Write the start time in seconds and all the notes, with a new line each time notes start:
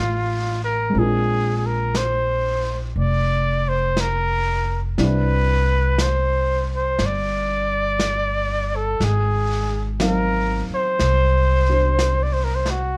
Already playing: A1 A#3 C4 D4 F4 G4 A#4 C5
0.64 A#4
0.90 G#3 C4
0.94 A#1 D4 F4, brush sweep
0.99 G#4 A#4
1.57 G#4
1.66 A#4
1.95 C5, brush sweep, snare, hi-hat pedal
2.96 F1 D5, brush sweep
3.69 C5
3.97 A#4, brush sweep, snare, hi-hat pedal
4.98 C2 G3 C4 D4 E4 D5, brush sweep, snare
5.05 B4
5.98 C5, brush sweep, snare, hi-hat pedal
6.76 C5
6.99 G1, brush sweep, snare
7.06 D5
8.00 brush sweep, snare, hi-hat pedal
8.76 A4
9.00 G#1 G#4, brush sweep, snare
10.00 F#3 C4 D#4 A#4 F5, brush sweep, snare, hi-hat pedal
10.06 A#4
10.70 muted upright bass stroke
10.74 C5
10.99 C2, brush sweep, snare
11.69 D4 F#4 C5
11.99 brush sweep, snare, hi-hat pedal
12.23 D5
12.33 C5
12.44 A#4
12.55 C5
12.65 snare
12.70 F#4